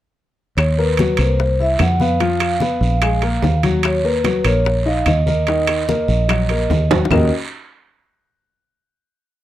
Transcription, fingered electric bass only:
0, 0, Header, 1, 2, 480
1, 0, Start_track
1, 0, Key_signature, -6, "minor"
1, 0, Tempo, 408719
1, 686, Time_signature, 4, 2, 24, 8
1, 11080, End_track
2, 0, Start_track
2, 0, Title_t, "Fingered electric bass"
2, 0, Program_c, 0, 33
2, 671, Note_on_c, 0, 39, 82
2, 1349, Note_off_c, 0, 39, 0
2, 1391, Note_on_c, 0, 36, 98
2, 2068, Note_off_c, 0, 36, 0
2, 2110, Note_on_c, 0, 41, 83
2, 3240, Note_off_c, 0, 41, 0
2, 3298, Note_on_c, 0, 34, 94
2, 3977, Note_off_c, 0, 34, 0
2, 4024, Note_on_c, 0, 39, 88
2, 5155, Note_off_c, 0, 39, 0
2, 5220, Note_on_c, 0, 34, 92
2, 5897, Note_off_c, 0, 34, 0
2, 5941, Note_on_c, 0, 39, 73
2, 7075, Note_off_c, 0, 39, 0
2, 7144, Note_on_c, 0, 34, 88
2, 7822, Note_off_c, 0, 34, 0
2, 7866, Note_on_c, 0, 39, 80
2, 8294, Note_off_c, 0, 39, 0
2, 8345, Note_on_c, 0, 39, 85
2, 8573, Note_off_c, 0, 39, 0
2, 11080, End_track
0, 0, End_of_file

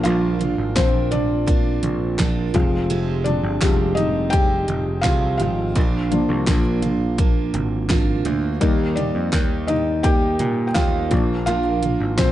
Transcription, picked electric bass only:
0, 0, Header, 1, 2, 480
1, 0, Start_track
1, 0, Tempo, 714201
1, 30, Time_signature, 4, 2, 24, 8
1, 8279, End_track
2, 0, Start_track
2, 0, Title_t, "Picked electric bass"
2, 0, Program_c, 0, 34
2, 31, Note_on_c, 0, 34, 100
2, 365, Note_off_c, 0, 34, 0
2, 392, Note_on_c, 0, 32, 85
2, 511, Note_off_c, 0, 32, 0
2, 511, Note_on_c, 0, 34, 86
2, 1203, Note_off_c, 0, 34, 0
2, 1229, Note_on_c, 0, 34, 82
2, 1683, Note_off_c, 0, 34, 0
2, 1711, Note_on_c, 0, 29, 86
2, 2284, Note_off_c, 0, 29, 0
2, 2308, Note_on_c, 0, 31, 87
2, 2420, Note_off_c, 0, 31, 0
2, 2429, Note_on_c, 0, 29, 95
2, 3122, Note_off_c, 0, 29, 0
2, 3148, Note_on_c, 0, 29, 87
2, 3372, Note_off_c, 0, 29, 0
2, 3389, Note_on_c, 0, 36, 89
2, 3613, Note_off_c, 0, 36, 0
2, 3628, Note_on_c, 0, 32, 82
2, 3852, Note_off_c, 0, 32, 0
2, 3870, Note_on_c, 0, 34, 100
2, 4205, Note_off_c, 0, 34, 0
2, 4228, Note_on_c, 0, 36, 88
2, 4340, Note_off_c, 0, 36, 0
2, 4349, Note_on_c, 0, 34, 91
2, 5043, Note_off_c, 0, 34, 0
2, 5067, Note_on_c, 0, 32, 84
2, 5522, Note_off_c, 0, 32, 0
2, 5549, Note_on_c, 0, 38, 84
2, 5773, Note_off_c, 0, 38, 0
2, 5787, Note_on_c, 0, 39, 97
2, 6123, Note_off_c, 0, 39, 0
2, 6150, Note_on_c, 0, 41, 75
2, 6262, Note_off_c, 0, 41, 0
2, 6267, Note_on_c, 0, 39, 94
2, 6961, Note_off_c, 0, 39, 0
2, 6990, Note_on_c, 0, 46, 89
2, 7213, Note_off_c, 0, 46, 0
2, 7228, Note_on_c, 0, 39, 98
2, 7452, Note_off_c, 0, 39, 0
2, 7468, Note_on_c, 0, 34, 93
2, 7692, Note_off_c, 0, 34, 0
2, 7709, Note_on_c, 0, 34, 104
2, 8044, Note_off_c, 0, 34, 0
2, 8068, Note_on_c, 0, 32, 87
2, 8188, Note_off_c, 0, 32, 0
2, 8188, Note_on_c, 0, 34, 94
2, 8279, Note_off_c, 0, 34, 0
2, 8279, End_track
0, 0, End_of_file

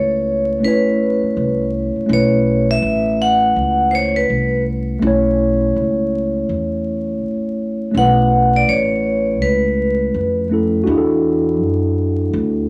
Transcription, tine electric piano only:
0, 0, Header, 1, 2, 480
1, 0, Start_track
1, 0, Key_signature, 2, "minor"
1, 0, Tempo, 731707
1, 1377, Time_signature, 4, 2, 24, 8
1, 8326, End_track
2, 0, Start_track
2, 0, Title_t, "Tine electric piano"
2, 0, Program_c, 0, 4
2, 0, Note_on_c, 0, 57, 80
2, 0, Note_on_c, 0, 61, 63
2, 0, Note_on_c, 0, 64, 72
2, 0, Note_on_c, 0, 71, 78
2, 376, Note_off_c, 0, 57, 0
2, 383, Note_off_c, 0, 61, 0
2, 391, Note_off_c, 0, 64, 0
2, 395, Note_on_c, 0, 57, 64
2, 400, Note_off_c, 0, 71, 0
2, 413, Note_on_c, 0, 61, 57
2, 428, Note_on_c, 0, 64, 63
2, 446, Note_on_c, 0, 73, 71
2, 1346, Note_off_c, 0, 57, 0
2, 1353, Note_on_c, 0, 57, 62
2, 1356, Note_off_c, 0, 61, 0
2, 1363, Note_off_c, 0, 64, 0
2, 1369, Note_on_c, 0, 61, 60
2, 1373, Note_off_c, 0, 73, 0
2, 1385, Note_on_c, 0, 64, 59
2, 1402, Note_on_c, 0, 71, 67
2, 3259, Note_off_c, 0, 57, 0
2, 3267, Note_off_c, 0, 61, 0
2, 3275, Note_off_c, 0, 64, 0
2, 3276, Note_on_c, 0, 57, 76
2, 3283, Note_off_c, 0, 71, 0
2, 3294, Note_on_c, 0, 61, 69
2, 3309, Note_on_c, 0, 64, 72
2, 3326, Note_on_c, 0, 73, 90
2, 5180, Note_off_c, 0, 57, 0
2, 5189, Note_off_c, 0, 61, 0
2, 5192, Note_on_c, 0, 57, 63
2, 5197, Note_off_c, 0, 64, 0
2, 5205, Note_off_c, 0, 73, 0
2, 5209, Note_on_c, 0, 61, 61
2, 5225, Note_on_c, 0, 64, 57
2, 5239, Note_on_c, 0, 71, 73
2, 6858, Note_off_c, 0, 57, 0
2, 6867, Note_off_c, 0, 61, 0
2, 6875, Note_off_c, 0, 64, 0
2, 6882, Note_off_c, 0, 71, 0
2, 6885, Note_on_c, 0, 57, 59
2, 6895, Note_on_c, 0, 61, 52
2, 6903, Note_on_c, 0, 64, 58
2, 6911, Note_on_c, 0, 69, 67
2, 7109, Note_on_c, 0, 66, 83
2, 7127, Note_on_c, 0, 62, 74
2, 7131, Note_off_c, 0, 57, 0
2, 7136, Note_off_c, 0, 61, 0
2, 7136, Note_off_c, 0, 64, 0
2, 7144, Note_off_c, 0, 69, 0
2, 7144, Note_on_c, 0, 64, 74
2, 7161, Note_on_c, 0, 68, 63
2, 7201, Note_off_c, 0, 68, 0
2, 7202, Note_on_c, 0, 69, 86
2, 8326, Note_off_c, 0, 62, 0
2, 8326, Note_off_c, 0, 64, 0
2, 8326, Note_off_c, 0, 66, 0
2, 8326, Note_off_c, 0, 69, 0
2, 8326, End_track
0, 0, End_of_file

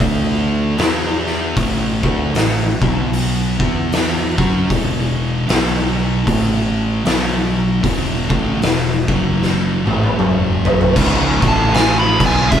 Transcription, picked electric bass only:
0, 0, Header, 1, 2, 480
1, 0, Start_track
1, 0, Tempo, 782269
1, 962, Time_signature, 4, 2, 24, 8
1, 7731, End_track
2, 0, Start_track
2, 0, Title_t, "Picked electric bass"
2, 0, Program_c, 0, 34
2, 3, Note_on_c, 0, 38, 93
2, 458, Note_off_c, 0, 38, 0
2, 481, Note_on_c, 0, 40, 98
2, 938, Note_off_c, 0, 40, 0
2, 966, Note_on_c, 0, 33, 91
2, 1229, Note_off_c, 0, 33, 0
2, 1248, Note_on_c, 0, 38, 93
2, 1430, Note_off_c, 0, 38, 0
2, 1448, Note_on_c, 0, 33, 80
2, 1710, Note_off_c, 0, 33, 0
2, 1733, Note_on_c, 0, 35, 91
2, 2186, Note_off_c, 0, 35, 0
2, 2211, Note_on_c, 0, 40, 101
2, 2665, Note_off_c, 0, 40, 0
2, 2690, Note_on_c, 0, 42, 99
2, 2871, Note_off_c, 0, 42, 0
2, 2888, Note_on_c, 0, 28, 91
2, 3341, Note_off_c, 0, 28, 0
2, 3367, Note_on_c, 0, 35, 99
2, 3821, Note_off_c, 0, 35, 0
2, 3852, Note_on_c, 0, 33, 98
2, 4303, Note_off_c, 0, 33, 0
2, 4327, Note_on_c, 0, 35, 95
2, 4780, Note_off_c, 0, 35, 0
2, 4812, Note_on_c, 0, 28, 99
2, 5072, Note_off_c, 0, 28, 0
2, 5094, Note_on_c, 0, 33, 88
2, 5272, Note_off_c, 0, 33, 0
2, 5291, Note_on_c, 0, 28, 80
2, 5551, Note_off_c, 0, 28, 0
2, 5575, Note_on_c, 0, 30, 96
2, 6025, Note_off_c, 0, 30, 0
2, 6051, Note_on_c, 0, 33, 93
2, 6229, Note_off_c, 0, 33, 0
2, 6246, Note_on_c, 0, 30, 90
2, 6698, Note_off_c, 0, 30, 0
2, 6729, Note_on_c, 0, 25, 105
2, 6988, Note_off_c, 0, 25, 0
2, 7012, Note_on_c, 0, 33, 97
2, 7462, Note_off_c, 0, 33, 0
2, 7489, Note_on_c, 0, 35, 101
2, 7667, Note_off_c, 0, 35, 0
2, 7684, Note_on_c, 0, 25, 106
2, 7731, Note_off_c, 0, 25, 0
2, 7731, End_track
0, 0, End_of_file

